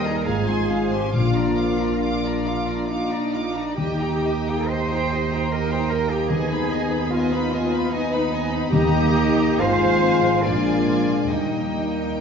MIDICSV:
0, 0, Header, 1, 9, 480
1, 0, Start_track
1, 0, Key_signature, -3, "major"
1, 0, Tempo, 873362
1, 626, Time_signature, 3, 2, 24, 8
1, 2070, Tempo, 917431
1, 2550, Tempo, 807537
1, 4950, Tempo, 872093
1, 6867, End_track
2, 0, Start_track
2, 0, Title_t, "Violin section"
2, 0, Program_c, 0, 48
2, 33, Note_on_c, 0, 82, 43
2, 145, Note_on_c, 0, 80, 44
2, 148, Note_off_c, 0, 82, 0
2, 256, Note_off_c, 0, 80, 0
2, 267, Note_on_c, 0, 84, 42
2, 385, Note_off_c, 0, 84, 0
2, 396, Note_on_c, 0, 80, 38
2, 511, Note_off_c, 0, 80, 0
2, 515, Note_on_c, 0, 84, 39
2, 631, Note_off_c, 0, 84, 0
2, 633, Note_on_c, 0, 86, 44
2, 742, Note_off_c, 0, 86, 0
2, 750, Note_on_c, 0, 82, 39
2, 869, Note_off_c, 0, 82, 0
2, 874, Note_on_c, 0, 86, 35
2, 991, Note_off_c, 0, 86, 0
2, 995, Note_on_c, 0, 82, 36
2, 1113, Note_off_c, 0, 82, 0
2, 1122, Note_on_c, 0, 86, 41
2, 1229, Note_off_c, 0, 86, 0
2, 1242, Note_on_c, 0, 82, 36
2, 1357, Note_off_c, 0, 82, 0
2, 1360, Note_on_c, 0, 86, 35
2, 1475, Note_off_c, 0, 86, 0
2, 1480, Note_on_c, 0, 82, 32
2, 1591, Note_on_c, 0, 86, 36
2, 1594, Note_off_c, 0, 82, 0
2, 1701, Note_off_c, 0, 86, 0
2, 1713, Note_on_c, 0, 82, 34
2, 1831, Note_off_c, 0, 82, 0
2, 1839, Note_on_c, 0, 86, 37
2, 1953, Note_on_c, 0, 82, 34
2, 1955, Note_off_c, 0, 86, 0
2, 2073, Note_off_c, 0, 82, 0
2, 2073, Note_on_c, 0, 79, 48
2, 2182, Note_off_c, 0, 79, 0
2, 2194, Note_on_c, 0, 82, 43
2, 2312, Note_on_c, 0, 79, 41
2, 2314, Note_off_c, 0, 82, 0
2, 2433, Note_off_c, 0, 79, 0
2, 2439, Note_on_c, 0, 82, 40
2, 2555, Note_off_c, 0, 82, 0
2, 2562, Note_on_c, 0, 79, 43
2, 2677, Note_off_c, 0, 79, 0
2, 2696, Note_on_c, 0, 82, 41
2, 2812, Note_off_c, 0, 82, 0
2, 2813, Note_on_c, 0, 79, 39
2, 2929, Note_off_c, 0, 79, 0
2, 2931, Note_on_c, 0, 82, 41
2, 3046, Note_off_c, 0, 82, 0
2, 3046, Note_on_c, 0, 79, 42
2, 3153, Note_off_c, 0, 79, 0
2, 3169, Note_on_c, 0, 82, 42
2, 3280, Note_off_c, 0, 82, 0
2, 3286, Note_on_c, 0, 79, 47
2, 3397, Note_off_c, 0, 79, 0
2, 3411, Note_on_c, 0, 82, 42
2, 3521, Note_off_c, 0, 82, 0
2, 3534, Note_on_c, 0, 80, 49
2, 3636, Note_off_c, 0, 80, 0
2, 3648, Note_on_c, 0, 83, 48
2, 3762, Note_off_c, 0, 83, 0
2, 3772, Note_on_c, 0, 80, 45
2, 3885, Note_off_c, 0, 80, 0
2, 3887, Note_on_c, 0, 83, 46
2, 4002, Note_off_c, 0, 83, 0
2, 4017, Note_on_c, 0, 80, 50
2, 4119, Note_off_c, 0, 80, 0
2, 4135, Note_on_c, 0, 83, 51
2, 4245, Note_off_c, 0, 83, 0
2, 4256, Note_on_c, 0, 80, 47
2, 4365, Note_off_c, 0, 80, 0
2, 4370, Note_on_c, 0, 83, 54
2, 4482, Note_off_c, 0, 83, 0
2, 4488, Note_on_c, 0, 80, 48
2, 4592, Note_off_c, 0, 80, 0
2, 4602, Note_on_c, 0, 83, 53
2, 4716, Note_off_c, 0, 83, 0
2, 4726, Note_on_c, 0, 80, 52
2, 4828, Note_on_c, 0, 83, 52
2, 4838, Note_off_c, 0, 80, 0
2, 4951, Note_off_c, 0, 83, 0
2, 4959, Note_on_c, 0, 82, 67
2, 5422, Note_off_c, 0, 82, 0
2, 5443, Note_on_c, 0, 80, 56
2, 5899, Note_off_c, 0, 80, 0
2, 5906, Note_on_c, 0, 80, 53
2, 6371, Note_off_c, 0, 80, 0
2, 6378, Note_on_c, 0, 79, 45
2, 6867, Note_off_c, 0, 79, 0
2, 6867, End_track
3, 0, Start_track
3, 0, Title_t, "Violin section"
3, 0, Program_c, 1, 48
3, 23, Note_on_c, 1, 75, 48
3, 135, Note_on_c, 1, 77, 50
3, 143, Note_off_c, 1, 75, 0
3, 250, Note_off_c, 1, 77, 0
3, 263, Note_on_c, 1, 80, 43
3, 375, Note_on_c, 1, 77, 40
3, 384, Note_off_c, 1, 80, 0
3, 499, Note_on_c, 1, 80, 38
3, 501, Note_off_c, 1, 77, 0
3, 623, Note_off_c, 1, 80, 0
3, 625, Note_on_c, 1, 77, 39
3, 738, Note_off_c, 1, 77, 0
3, 746, Note_on_c, 1, 74, 38
3, 867, Note_off_c, 1, 74, 0
3, 872, Note_on_c, 1, 77, 39
3, 989, Note_on_c, 1, 74, 35
3, 990, Note_off_c, 1, 77, 0
3, 1109, Note_on_c, 1, 77, 42
3, 1110, Note_off_c, 1, 74, 0
3, 1222, Note_off_c, 1, 77, 0
3, 1234, Note_on_c, 1, 74, 37
3, 1353, Note_off_c, 1, 74, 0
3, 1354, Note_on_c, 1, 77, 37
3, 1472, Note_off_c, 1, 77, 0
3, 1476, Note_on_c, 1, 74, 34
3, 1592, Note_off_c, 1, 74, 0
3, 1598, Note_on_c, 1, 77, 35
3, 1704, Note_off_c, 1, 77, 0
3, 1714, Note_on_c, 1, 74, 38
3, 1831, Note_off_c, 1, 74, 0
3, 1835, Note_on_c, 1, 77, 37
3, 1953, Note_off_c, 1, 77, 0
3, 1958, Note_on_c, 1, 74, 35
3, 2075, Note_off_c, 1, 74, 0
3, 2078, Note_on_c, 1, 75, 40
3, 2184, Note_off_c, 1, 75, 0
3, 2196, Note_on_c, 1, 79, 40
3, 2314, Note_off_c, 1, 79, 0
3, 2319, Note_on_c, 1, 75, 45
3, 2437, Note_off_c, 1, 75, 0
3, 2439, Note_on_c, 1, 79, 39
3, 2550, Note_on_c, 1, 75, 40
3, 2555, Note_off_c, 1, 79, 0
3, 2671, Note_off_c, 1, 75, 0
3, 2689, Note_on_c, 1, 79, 44
3, 2806, Note_on_c, 1, 75, 40
3, 2809, Note_off_c, 1, 79, 0
3, 2926, Note_off_c, 1, 75, 0
3, 2930, Note_on_c, 1, 79, 44
3, 3043, Note_on_c, 1, 75, 45
3, 3045, Note_off_c, 1, 79, 0
3, 3151, Note_off_c, 1, 75, 0
3, 3154, Note_on_c, 1, 79, 41
3, 3266, Note_on_c, 1, 75, 40
3, 3273, Note_off_c, 1, 79, 0
3, 3388, Note_off_c, 1, 75, 0
3, 3388, Note_on_c, 1, 79, 42
3, 3508, Note_on_c, 1, 75, 45
3, 3509, Note_off_c, 1, 79, 0
3, 3622, Note_off_c, 1, 75, 0
3, 3630, Note_on_c, 1, 71, 46
3, 3747, Note_on_c, 1, 75, 50
3, 3753, Note_off_c, 1, 71, 0
3, 3871, Note_on_c, 1, 71, 43
3, 3872, Note_off_c, 1, 75, 0
3, 3995, Note_off_c, 1, 71, 0
3, 3995, Note_on_c, 1, 75, 54
3, 4107, Note_off_c, 1, 75, 0
3, 4112, Note_on_c, 1, 71, 48
3, 4234, Note_off_c, 1, 71, 0
3, 4239, Note_on_c, 1, 75, 51
3, 4357, Note_off_c, 1, 75, 0
3, 4357, Note_on_c, 1, 71, 50
3, 4475, Note_off_c, 1, 71, 0
3, 4476, Note_on_c, 1, 75, 60
3, 4585, Note_off_c, 1, 75, 0
3, 4592, Note_on_c, 1, 71, 53
3, 4707, Note_on_c, 1, 75, 51
3, 4711, Note_off_c, 1, 71, 0
3, 4827, Note_on_c, 1, 71, 49
3, 4828, Note_off_c, 1, 75, 0
3, 4944, Note_on_c, 1, 75, 65
3, 4950, Note_off_c, 1, 71, 0
3, 5415, Note_off_c, 1, 75, 0
3, 5428, Note_on_c, 1, 77, 65
3, 5898, Note_on_c, 1, 74, 57
3, 5899, Note_off_c, 1, 77, 0
3, 6367, Note_off_c, 1, 74, 0
3, 6375, Note_on_c, 1, 75, 43
3, 6820, Note_off_c, 1, 75, 0
3, 6867, End_track
4, 0, Start_track
4, 0, Title_t, "Harp"
4, 0, Program_c, 2, 46
4, 0, Note_on_c, 2, 51, 67
4, 0, Note_on_c, 2, 58, 44
4, 0, Note_on_c, 2, 63, 45
4, 0, Note_on_c, 2, 67, 46
4, 0, Note_on_c, 2, 70, 46
4, 0, Note_on_c, 2, 75, 44
4, 0, Note_on_c, 2, 79, 42
4, 25, Note_on_c, 2, 82, 43
4, 144, Note_on_c, 2, 44, 57
4, 162, Note_off_c, 2, 51, 0
4, 162, Note_off_c, 2, 75, 0
4, 163, Note_off_c, 2, 82, 0
4, 164, Note_off_c, 2, 58, 0
4, 164, Note_off_c, 2, 67, 0
4, 164, Note_off_c, 2, 70, 0
4, 164, Note_off_c, 2, 79, 0
4, 165, Note_off_c, 2, 63, 0
4, 265, Note_on_c, 2, 56, 40
4, 383, Note_on_c, 2, 60, 41
4, 504, Note_on_c, 2, 65, 40
4, 627, Note_on_c, 2, 46, 48
4, 645, Note_off_c, 2, 44, 0
4, 645, Note_off_c, 2, 60, 0
4, 646, Note_off_c, 2, 56, 0
4, 747, Note_on_c, 2, 53, 37
4, 867, Note_on_c, 2, 58, 35
4, 986, Note_off_c, 2, 65, 0
4, 1109, Note_on_c, 2, 74, 35
4, 1229, Note_on_c, 2, 70, 35
4, 1351, Note_on_c, 2, 77, 35
4, 1471, Note_on_c, 2, 86, 37
4, 1585, Note_off_c, 2, 77, 0
4, 1591, Note_on_c, 2, 77, 34
4, 1707, Note_off_c, 2, 70, 0
4, 1714, Note_on_c, 2, 70, 37
4, 1826, Note_off_c, 2, 74, 0
4, 1833, Note_on_c, 2, 74, 37
4, 1954, Note_on_c, 2, 65, 37
4, 2074, Note_on_c, 2, 51, 48
4, 2089, Note_off_c, 2, 53, 0
4, 2090, Note_off_c, 2, 46, 0
4, 2090, Note_off_c, 2, 86, 0
4, 2091, Note_off_c, 2, 77, 0
4, 2092, Note_off_c, 2, 65, 0
4, 2092, Note_off_c, 2, 74, 0
4, 2189, Note_off_c, 2, 58, 0
4, 2195, Note_on_c, 2, 58, 37
4, 2312, Note_on_c, 2, 63, 38
4, 2432, Note_on_c, 2, 75, 36
4, 2549, Note_off_c, 2, 70, 0
4, 2556, Note_on_c, 2, 70, 37
4, 2677, Note_off_c, 2, 75, 0
4, 2684, Note_on_c, 2, 75, 38
4, 2805, Note_on_c, 2, 87, 43
4, 2932, Note_on_c, 2, 82, 44
4, 3039, Note_off_c, 2, 87, 0
4, 3046, Note_on_c, 2, 87, 42
4, 3154, Note_off_c, 2, 75, 0
4, 3161, Note_on_c, 2, 75, 40
4, 3272, Note_off_c, 2, 70, 0
4, 3384, Note_off_c, 2, 75, 0
4, 3391, Note_on_c, 2, 75, 44
4, 3507, Note_off_c, 2, 51, 0
4, 3514, Note_on_c, 2, 51, 56
4, 3534, Note_off_c, 2, 58, 0
4, 3534, Note_off_c, 2, 82, 0
4, 3635, Note_on_c, 2, 59, 42
4, 3750, Note_off_c, 2, 63, 0
4, 3872, Note_off_c, 2, 75, 0
4, 3879, Note_on_c, 2, 75, 46
4, 3999, Note_on_c, 2, 71, 52
4, 4111, Note_off_c, 2, 75, 0
4, 4118, Note_on_c, 2, 75, 46
4, 4234, Note_off_c, 2, 87, 0
4, 4242, Note_on_c, 2, 87, 50
4, 4360, Note_on_c, 2, 83, 48
4, 4471, Note_off_c, 2, 87, 0
4, 4478, Note_on_c, 2, 87, 53
4, 4588, Note_off_c, 2, 75, 0
4, 4595, Note_on_c, 2, 75, 51
4, 4707, Note_off_c, 2, 71, 0
4, 4714, Note_on_c, 2, 71, 57
4, 4825, Note_off_c, 2, 75, 0
4, 4832, Note_on_c, 2, 75, 54
4, 4946, Note_off_c, 2, 51, 0
4, 4953, Note_on_c, 2, 51, 65
4, 4971, Note_off_c, 2, 59, 0
4, 4972, Note_off_c, 2, 71, 0
4, 4972, Note_off_c, 2, 83, 0
4, 5069, Note_on_c, 2, 58, 47
4, 5189, Note_on_c, 2, 63, 47
4, 5309, Note_off_c, 2, 75, 0
4, 5316, Note_on_c, 2, 75, 54
4, 5438, Note_on_c, 2, 44, 55
4, 5459, Note_off_c, 2, 63, 0
4, 5459, Note_off_c, 2, 75, 0
4, 5460, Note_off_c, 2, 58, 0
4, 5461, Note_off_c, 2, 51, 0
4, 5462, Note_off_c, 2, 87, 0
4, 5556, Note_on_c, 2, 53, 40
4, 5667, Note_on_c, 2, 56, 50
4, 5786, Note_on_c, 2, 65, 48
4, 5903, Note_on_c, 2, 46, 53
4, 5922, Note_off_c, 2, 44, 0
4, 6010, Note_off_c, 2, 53, 0
4, 6017, Note_on_c, 2, 53, 39
4, 6133, Note_off_c, 2, 56, 0
4, 6139, Note_on_c, 2, 56, 44
4, 6376, Note_on_c, 2, 51, 46
4, 6398, Note_off_c, 2, 53, 0
4, 6398, Note_off_c, 2, 65, 0
4, 6399, Note_off_c, 2, 46, 0
4, 6400, Note_off_c, 2, 56, 0
4, 6499, Note_on_c, 2, 55, 30
4, 6624, Note_on_c, 2, 63, 34
4, 6747, Note_on_c, 2, 70, 33
4, 6867, Note_off_c, 2, 51, 0
4, 6867, Note_off_c, 2, 55, 0
4, 6867, Note_off_c, 2, 63, 0
4, 6867, Note_off_c, 2, 70, 0
4, 6867, End_track
5, 0, Start_track
5, 0, Title_t, "Cello section"
5, 0, Program_c, 3, 48
5, 44, Note_on_c, 3, 68, 56
5, 90, Note_on_c, 3, 70, 61
5, 94, Note_off_c, 3, 68, 0
5, 140, Note_on_c, 3, 68, 66
5, 144, Note_off_c, 3, 70, 0
5, 503, Note_off_c, 3, 68, 0
5, 510, Note_on_c, 3, 67, 61
5, 623, Note_on_c, 3, 65, 64
5, 629, Note_off_c, 3, 67, 0
5, 1335, Note_off_c, 3, 65, 0
5, 1349, Note_on_c, 3, 65, 56
5, 1583, Note_off_c, 3, 65, 0
5, 1590, Note_on_c, 3, 63, 50
5, 2072, Note_off_c, 3, 63, 0
5, 2076, Note_on_c, 3, 67, 64
5, 2544, Note_off_c, 3, 67, 0
5, 2551, Note_on_c, 3, 72, 67
5, 3043, Note_off_c, 3, 72, 0
5, 3045, Note_on_c, 3, 70, 61
5, 3160, Note_off_c, 3, 70, 0
5, 3163, Note_on_c, 3, 72, 67
5, 3277, Note_off_c, 3, 72, 0
5, 3277, Note_on_c, 3, 70, 72
5, 3393, Note_off_c, 3, 70, 0
5, 3397, Note_on_c, 3, 67, 70
5, 3509, Note_on_c, 3, 68, 78
5, 3514, Note_off_c, 3, 67, 0
5, 3994, Note_on_c, 3, 65, 71
5, 3995, Note_off_c, 3, 68, 0
5, 4228, Note_off_c, 3, 65, 0
5, 4236, Note_on_c, 3, 65, 71
5, 4469, Note_off_c, 3, 65, 0
5, 4475, Note_on_c, 3, 63, 71
5, 4952, Note_off_c, 3, 63, 0
5, 4952, Note_on_c, 3, 67, 96
5, 5431, Note_off_c, 3, 67, 0
5, 5434, Note_on_c, 3, 72, 90
5, 5902, Note_off_c, 3, 72, 0
5, 5903, Note_on_c, 3, 65, 73
5, 6379, Note_off_c, 3, 65, 0
5, 6382, Note_on_c, 3, 63, 54
5, 6867, Note_off_c, 3, 63, 0
5, 6867, End_track
6, 0, Start_track
6, 0, Title_t, "Viola section"
6, 0, Program_c, 4, 48
6, 33, Note_on_c, 4, 63, 45
6, 143, Note_on_c, 4, 56, 50
6, 148, Note_off_c, 4, 63, 0
6, 255, Note_off_c, 4, 56, 0
6, 264, Note_on_c, 4, 60, 42
6, 383, Note_on_c, 4, 56, 38
6, 384, Note_off_c, 4, 60, 0
6, 504, Note_off_c, 4, 56, 0
6, 504, Note_on_c, 4, 60, 40
6, 623, Note_on_c, 4, 65, 44
6, 625, Note_off_c, 4, 60, 0
6, 737, Note_off_c, 4, 65, 0
6, 743, Note_on_c, 4, 62, 38
6, 866, Note_off_c, 4, 62, 0
6, 868, Note_on_c, 4, 65, 35
6, 983, Note_on_c, 4, 62, 34
6, 989, Note_off_c, 4, 65, 0
6, 1107, Note_off_c, 4, 62, 0
6, 1114, Note_on_c, 4, 65, 41
6, 1225, Note_off_c, 4, 65, 0
6, 1235, Note_on_c, 4, 62, 41
6, 1353, Note_off_c, 4, 62, 0
6, 1356, Note_on_c, 4, 65, 36
6, 1473, Note_off_c, 4, 65, 0
6, 1473, Note_on_c, 4, 62, 35
6, 1585, Note_on_c, 4, 65, 43
6, 1591, Note_off_c, 4, 62, 0
6, 1698, Note_off_c, 4, 65, 0
6, 1707, Note_on_c, 4, 62, 35
6, 1828, Note_off_c, 4, 62, 0
6, 1829, Note_on_c, 4, 65, 34
6, 1948, Note_on_c, 4, 62, 35
6, 1950, Note_off_c, 4, 65, 0
6, 2070, Note_off_c, 4, 62, 0
6, 2077, Note_on_c, 4, 67, 44
6, 2184, Note_off_c, 4, 67, 0
6, 2197, Note_on_c, 4, 63, 40
6, 2315, Note_off_c, 4, 63, 0
6, 2318, Note_on_c, 4, 67, 43
6, 2437, Note_off_c, 4, 67, 0
6, 2446, Note_on_c, 4, 63, 38
6, 2558, Note_off_c, 4, 63, 0
6, 2564, Note_on_c, 4, 67, 46
6, 2678, Note_off_c, 4, 67, 0
6, 2692, Note_on_c, 4, 63, 46
6, 2810, Note_off_c, 4, 63, 0
6, 2814, Note_on_c, 4, 67, 39
6, 2930, Note_off_c, 4, 67, 0
6, 2934, Note_on_c, 4, 63, 45
6, 3048, Note_off_c, 4, 63, 0
6, 3053, Note_on_c, 4, 67, 46
6, 3157, Note_off_c, 4, 67, 0
6, 3167, Note_on_c, 4, 63, 41
6, 3277, Note_on_c, 4, 67, 41
6, 3279, Note_off_c, 4, 63, 0
6, 3393, Note_off_c, 4, 67, 0
6, 3394, Note_on_c, 4, 63, 40
6, 3513, Note_off_c, 4, 63, 0
6, 3516, Note_on_c, 4, 59, 52
6, 3626, Note_off_c, 4, 59, 0
6, 3634, Note_on_c, 4, 63, 50
6, 3755, Note_off_c, 4, 63, 0
6, 3756, Note_on_c, 4, 59, 46
6, 3874, Note_on_c, 4, 63, 50
6, 3877, Note_off_c, 4, 59, 0
6, 3996, Note_off_c, 4, 63, 0
6, 3996, Note_on_c, 4, 59, 56
6, 4108, Note_off_c, 4, 59, 0
6, 4114, Note_on_c, 4, 63, 58
6, 4235, Note_off_c, 4, 63, 0
6, 4238, Note_on_c, 4, 59, 51
6, 4355, Note_on_c, 4, 63, 53
6, 4356, Note_off_c, 4, 59, 0
6, 4474, Note_off_c, 4, 63, 0
6, 4476, Note_on_c, 4, 59, 55
6, 4585, Note_off_c, 4, 59, 0
6, 4595, Note_on_c, 4, 63, 49
6, 4709, Note_on_c, 4, 59, 49
6, 4712, Note_off_c, 4, 63, 0
6, 4829, Note_on_c, 4, 63, 54
6, 4830, Note_off_c, 4, 59, 0
6, 4944, Note_off_c, 4, 63, 0
6, 4951, Note_on_c, 4, 63, 66
6, 5418, Note_off_c, 4, 63, 0
6, 5434, Note_on_c, 4, 60, 66
6, 5894, Note_on_c, 4, 58, 59
6, 5902, Note_off_c, 4, 60, 0
6, 6365, Note_off_c, 4, 58, 0
6, 6376, Note_on_c, 4, 58, 45
6, 6867, Note_off_c, 4, 58, 0
6, 6867, End_track
7, 0, Start_track
7, 0, Title_t, "French horn section"
7, 0, Program_c, 5, 60
7, 0, Note_on_c, 5, 55, 59
7, 0, Note_on_c, 5, 63, 59
7, 137, Note_off_c, 5, 63, 0
7, 138, Note_off_c, 5, 55, 0
7, 148, Note_on_c, 5, 56, 60
7, 148, Note_on_c, 5, 65, 55
7, 543, Note_off_c, 5, 56, 0
7, 543, Note_off_c, 5, 65, 0
7, 637, Note_on_c, 5, 62, 52
7, 640, Note_on_c, 5, 58, 52
7, 1575, Note_off_c, 5, 62, 0
7, 1588, Note_off_c, 5, 58, 0
7, 1595, Note_on_c, 5, 58, 47
7, 1598, Note_on_c, 5, 62, 43
7, 1881, Note_off_c, 5, 58, 0
7, 1883, Note_off_c, 5, 62, 0
7, 2078, Note_on_c, 5, 63, 51
7, 2079, Note_on_c, 5, 58, 51
7, 3023, Note_off_c, 5, 58, 0
7, 3023, Note_off_c, 5, 63, 0
7, 3045, Note_on_c, 5, 63, 53
7, 3047, Note_on_c, 5, 58, 52
7, 3503, Note_off_c, 5, 63, 0
7, 3504, Note_off_c, 5, 58, 0
7, 3513, Note_on_c, 5, 63, 56
7, 3517, Note_on_c, 5, 59, 61
7, 4456, Note_off_c, 5, 63, 0
7, 4469, Note_off_c, 5, 59, 0
7, 4474, Note_on_c, 5, 63, 65
7, 4476, Note_on_c, 5, 59, 59
7, 4943, Note_off_c, 5, 59, 0
7, 4943, Note_off_c, 5, 63, 0
7, 4951, Note_on_c, 5, 58, 61
7, 4953, Note_on_c, 5, 63, 67
7, 5431, Note_off_c, 5, 63, 0
7, 5440, Note_off_c, 5, 58, 0
7, 5440, Note_on_c, 5, 56, 71
7, 5440, Note_on_c, 5, 65, 69
7, 5893, Note_off_c, 5, 56, 0
7, 5898, Note_on_c, 5, 62, 56
7, 5900, Note_on_c, 5, 56, 59
7, 5905, Note_off_c, 5, 65, 0
7, 6368, Note_off_c, 5, 56, 0
7, 6377, Note_off_c, 5, 62, 0
7, 6382, Note_on_c, 5, 55, 51
7, 6382, Note_on_c, 5, 63, 48
7, 6867, Note_off_c, 5, 55, 0
7, 6867, Note_off_c, 5, 63, 0
7, 6867, End_track
8, 0, Start_track
8, 0, Title_t, "Timpani"
8, 0, Program_c, 6, 47
8, 623, Note_on_c, 6, 46, 63
8, 1328, Note_off_c, 6, 46, 0
8, 2076, Note_on_c, 6, 51, 61
8, 2784, Note_off_c, 6, 51, 0
8, 3512, Note_on_c, 6, 51, 68
8, 4213, Note_off_c, 6, 51, 0
8, 4953, Note_on_c, 6, 51, 70
8, 5419, Note_off_c, 6, 51, 0
8, 6867, End_track
9, 0, Start_track
9, 0, Title_t, "Double bass section"
9, 0, Program_c, 7, 48
9, 0, Note_on_c, 7, 39, 59
9, 127, Note_off_c, 7, 39, 0
9, 145, Note_on_c, 7, 32, 53
9, 626, Note_off_c, 7, 32, 0
9, 626, Note_on_c, 7, 34, 48
9, 1954, Note_off_c, 7, 34, 0
9, 2079, Note_on_c, 7, 39, 47
9, 4933, Note_off_c, 7, 39, 0
9, 4958, Note_on_c, 7, 39, 66
9, 5421, Note_off_c, 7, 39, 0
9, 5441, Note_on_c, 7, 32, 64
9, 5896, Note_off_c, 7, 32, 0
9, 5907, Note_on_c, 7, 34, 56
9, 6381, Note_off_c, 7, 34, 0
9, 6384, Note_on_c, 7, 39, 45
9, 6867, Note_off_c, 7, 39, 0
9, 6867, End_track
0, 0, End_of_file